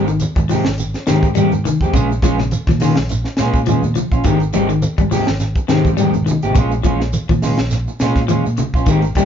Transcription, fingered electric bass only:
0, 0, Header, 1, 2, 480
1, 0, Start_track
1, 0, Tempo, 578035
1, 1612, Time_signature, 4, 2, 24, 8
1, 7681, End_track
2, 0, Start_track
2, 0, Title_t, "Fingered electric bass"
2, 0, Program_c, 0, 33
2, 0, Note_on_c, 0, 32, 83
2, 156, Note_off_c, 0, 32, 0
2, 305, Note_on_c, 0, 44, 77
2, 529, Note_off_c, 0, 44, 0
2, 555, Note_on_c, 0, 32, 80
2, 775, Note_off_c, 0, 32, 0
2, 908, Note_on_c, 0, 44, 83
2, 1249, Note_off_c, 0, 44, 0
2, 1279, Note_on_c, 0, 44, 90
2, 1373, Note_off_c, 0, 44, 0
2, 1502, Note_on_c, 0, 41, 77
2, 1604, Note_off_c, 0, 41, 0
2, 1610, Note_on_c, 0, 34, 93
2, 1835, Note_off_c, 0, 34, 0
2, 1849, Note_on_c, 0, 34, 85
2, 2075, Note_off_c, 0, 34, 0
2, 2223, Note_on_c, 0, 46, 79
2, 2448, Note_off_c, 0, 46, 0
2, 2470, Note_on_c, 0, 34, 77
2, 2691, Note_off_c, 0, 34, 0
2, 2827, Note_on_c, 0, 46, 80
2, 3168, Note_off_c, 0, 46, 0
2, 3193, Note_on_c, 0, 46, 93
2, 3289, Note_off_c, 0, 46, 0
2, 3422, Note_on_c, 0, 34, 77
2, 3523, Note_off_c, 0, 34, 0
2, 3531, Note_on_c, 0, 32, 97
2, 3755, Note_off_c, 0, 32, 0
2, 3781, Note_on_c, 0, 32, 86
2, 4000, Note_off_c, 0, 32, 0
2, 4140, Note_on_c, 0, 44, 76
2, 4366, Note_off_c, 0, 44, 0
2, 4390, Note_on_c, 0, 32, 79
2, 4611, Note_off_c, 0, 32, 0
2, 4728, Note_on_c, 0, 44, 79
2, 5077, Note_off_c, 0, 44, 0
2, 5104, Note_on_c, 0, 44, 88
2, 5204, Note_off_c, 0, 44, 0
2, 5347, Note_on_c, 0, 32, 75
2, 5443, Note_off_c, 0, 32, 0
2, 5448, Note_on_c, 0, 34, 99
2, 5673, Note_off_c, 0, 34, 0
2, 5687, Note_on_c, 0, 34, 84
2, 5913, Note_off_c, 0, 34, 0
2, 6058, Note_on_c, 0, 46, 80
2, 6284, Note_off_c, 0, 46, 0
2, 6300, Note_on_c, 0, 34, 75
2, 6526, Note_off_c, 0, 34, 0
2, 6656, Note_on_c, 0, 46, 84
2, 7002, Note_off_c, 0, 46, 0
2, 7031, Note_on_c, 0, 46, 94
2, 7127, Note_off_c, 0, 46, 0
2, 7255, Note_on_c, 0, 34, 76
2, 7359, Note_off_c, 0, 34, 0
2, 7364, Note_on_c, 0, 32, 100
2, 7592, Note_off_c, 0, 32, 0
2, 7601, Note_on_c, 0, 32, 82
2, 7681, Note_off_c, 0, 32, 0
2, 7681, End_track
0, 0, End_of_file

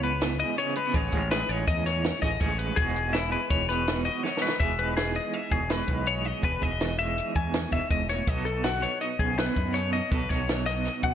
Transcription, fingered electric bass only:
0, 0, Header, 1, 2, 480
1, 0, Start_track
1, 0, Key_signature, 4, "major"
1, 0, Tempo, 366524
1, 1238, Time_signature, 5, 2, 24, 8
1, 14589, End_track
2, 0, Start_track
2, 0, Title_t, "Fingered electric bass"
2, 0, Program_c, 0, 33
2, 0, Note_on_c, 0, 37, 82
2, 551, Note_off_c, 0, 37, 0
2, 1240, Note_on_c, 0, 33, 97
2, 1426, Note_off_c, 0, 33, 0
2, 1476, Note_on_c, 0, 33, 100
2, 1851, Note_off_c, 0, 33, 0
2, 1953, Note_on_c, 0, 33, 97
2, 2141, Note_off_c, 0, 33, 0
2, 2195, Note_on_c, 0, 40, 96
2, 2757, Note_off_c, 0, 40, 0
2, 2918, Note_on_c, 0, 33, 94
2, 3103, Note_off_c, 0, 33, 0
2, 3156, Note_on_c, 0, 33, 82
2, 3529, Note_off_c, 0, 33, 0
2, 3635, Note_on_c, 0, 28, 90
2, 4383, Note_off_c, 0, 28, 0
2, 4593, Note_on_c, 0, 28, 82
2, 5341, Note_off_c, 0, 28, 0
2, 6026, Note_on_c, 0, 28, 85
2, 6777, Note_off_c, 0, 28, 0
2, 7221, Note_on_c, 0, 28, 87
2, 7599, Note_off_c, 0, 28, 0
2, 7706, Note_on_c, 0, 35, 83
2, 8270, Note_off_c, 0, 35, 0
2, 8421, Note_on_c, 0, 28, 90
2, 8611, Note_off_c, 0, 28, 0
2, 8672, Note_on_c, 0, 28, 81
2, 9424, Note_off_c, 0, 28, 0
2, 9633, Note_on_c, 0, 40, 85
2, 10008, Note_off_c, 0, 40, 0
2, 10114, Note_on_c, 0, 28, 80
2, 10207, Note_off_c, 0, 28, 0
2, 10352, Note_on_c, 0, 28, 86
2, 10729, Note_off_c, 0, 28, 0
2, 10831, Note_on_c, 0, 35, 89
2, 11586, Note_off_c, 0, 35, 0
2, 12037, Note_on_c, 0, 35, 79
2, 12414, Note_off_c, 0, 35, 0
2, 12529, Note_on_c, 0, 42, 85
2, 13091, Note_off_c, 0, 42, 0
2, 13246, Note_on_c, 0, 35, 90
2, 13433, Note_off_c, 0, 35, 0
2, 13494, Note_on_c, 0, 35, 83
2, 14244, Note_off_c, 0, 35, 0
2, 14454, Note_on_c, 0, 47, 83
2, 14589, Note_off_c, 0, 47, 0
2, 14589, End_track
0, 0, End_of_file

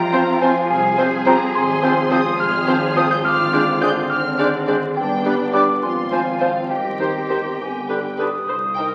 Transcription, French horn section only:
0, 0, Header, 1, 2, 480
1, 0, Start_track
1, 0, Tempo, 569260
1, 1305, Time_signature, 6, 3, 24, 8
1, 4672, Tempo, 587084
1, 7457, End_track
2, 0, Start_track
2, 0, Title_t, "French horn section"
2, 0, Program_c, 0, 60
2, 0, Note_on_c, 0, 53, 84
2, 0, Note_on_c, 0, 60, 75
2, 1160, Note_off_c, 0, 53, 0
2, 1160, Note_off_c, 0, 60, 0
2, 1303, Note_on_c, 0, 53, 86
2, 1303, Note_on_c, 0, 60, 86
2, 2707, Note_off_c, 0, 53, 0
2, 2736, Note_on_c, 0, 50, 77
2, 4150, Note_off_c, 0, 60, 0
2, 4191, Note_on_c, 0, 59, 66
2, 4894, Note_off_c, 0, 59, 0
2, 4902, Note_off_c, 0, 50, 0
2, 4907, Note_on_c, 0, 53, 52
2, 4911, Note_on_c, 0, 60, 64
2, 5611, Note_off_c, 0, 53, 0
2, 5626, Note_on_c, 0, 51, 46
2, 6350, Note_off_c, 0, 51, 0
2, 6351, Note_on_c, 0, 59, 44
2, 6352, Note_off_c, 0, 60, 0
2, 6352, Note_on_c, 0, 50, 39
2, 6831, Note_off_c, 0, 50, 0
2, 6840, Note_off_c, 0, 59, 0
2, 7457, End_track
0, 0, End_of_file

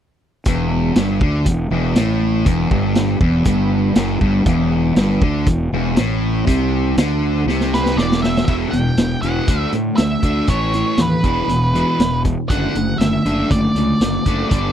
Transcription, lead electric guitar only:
0, 0, Header, 1, 2, 480
1, 0, Start_track
1, 0, Tempo, 501672
1, 441, Time_signature, 4, 2, 24, 8
1, 14085, End_track
2, 0, Start_track
2, 0, Title_t, "Lead electric guitar"
2, 0, Program_c, 0, 29
2, 7406, Note_on_c, 0, 71, 72
2, 7629, Note_on_c, 0, 74, 71
2, 7647, Note_off_c, 0, 71, 0
2, 7864, Note_off_c, 0, 74, 0
2, 7868, Note_on_c, 0, 76, 70
2, 8078, Note_off_c, 0, 76, 0
2, 8090, Note_on_c, 0, 76, 90
2, 8158, Note_off_c, 0, 76, 0
2, 8335, Note_on_c, 0, 79, 93
2, 8818, Note_off_c, 0, 79, 0
2, 8822, Note_on_c, 0, 78, 77
2, 9274, Note_off_c, 0, 78, 0
2, 9535, Note_on_c, 0, 76, 75
2, 9991, Note_off_c, 0, 76, 0
2, 10041, Note_on_c, 0, 73, 92
2, 10529, Note_on_c, 0, 71, 67
2, 10533, Note_off_c, 0, 73, 0
2, 11686, Note_off_c, 0, 71, 0
2, 11952, Note_on_c, 0, 78, 112
2, 12422, Note_on_c, 0, 76, 82
2, 12451, Note_off_c, 0, 78, 0
2, 12926, Note_off_c, 0, 76, 0
2, 12930, Note_on_c, 0, 74, 82
2, 13857, Note_off_c, 0, 74, 0
2, 13869, Note_on_c, 0, 74, 82
2, 14085, Note_off_c, 0, 74, 0
2, 14085, End_track
0, 0, End_of_file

